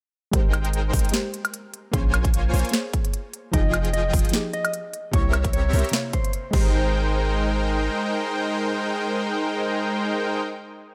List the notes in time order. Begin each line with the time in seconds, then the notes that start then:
0.32 G#1 G#3 D#4 G4 A#4 C5 G5, kick, closed hi-hat
0.36 C5
0.54 closed hi-hat, high woodblock
0.65 closed hi-hat
0.73 closed hi-hat
0.93 G#1 G#3 D#4 A#4 C5 G5, kick, open hi-hat
0.99 closed hi-hat
1.05 closed hi-hat
1.09 G#3 G4, closed hi-hat
1.14 A#4 C5, snare, closed hi-hat
1.34 closed hi-hat
1.45 closed hi-hat, high woodblock
1.54 closed hi-hat
1.74 closed hi-hat
1.92 A#1 A#3 F4 G#4 C5 C#5 G#5 C6, kick, closed hi-hat
1.96 C#4
2.14 closed hi-hat, high woodblock
2.25 kick, closed hi-hat
2.34 closed hi-hat
2.54 A#1 A#3 F4 C5 C#5 G#5, open hi-hat
2.59 closed hi-hat
2.65 closed hi-hat
2.69 A#3 G#4, closed hi-hat
2.74 C5 C#5, snare, closed hi-hat
2.93 kick, closed hi-hat
3.05 closed hi-hat
3.14 closed hi-hat
3.34 closed hi-hat
3.52 F1 F3 D#4 F4 G#4 D#5 G5, kick, closed hi-hat
3.74 closed hi-hat, high woodblock
3.85 closed hi-hat
3.93 D#5, closed hi-hat
4.13 F1 F3 F4 G#4 D#5 G5, kick, open hi-hat
4.19 closed hi-hat
4.25 closed hi-hat
4.29 F3 D#4, closed hi-hat
4.33 G4 G#4, snare, closed hi-hat
4.53 D#5, closed hi-hat
4.65 closed hi-hat, high woodblock
4.74 closed hi-hat
4.94 closed hi-hat
5.11 C2 C3 A#3 C4 E4 G4 A#4 C#5 E5, kick, closed hi-hat
5.16 C#6
5.33 closed hi-hat, high woodblock
5.44 kick, closed hi-hat
5.53 C#5, closed hi-hat
5.73 C2 C4 G4 A#4 C#5 E5, open hi-hat
5.79 closed hi-hat
5.84 closed hi-hat
5.89 C3 A#3, closed hi-hat
5.93 E4 C#5, snare, closed hi-hat
6.13 C5, kick, closed hi-hat
6.24 closed hi-hat
6.33 closed hi-hat
6.51 G#1 G#3 D#4 G4 A#4 C5 G5, kick, crash
6.57 C5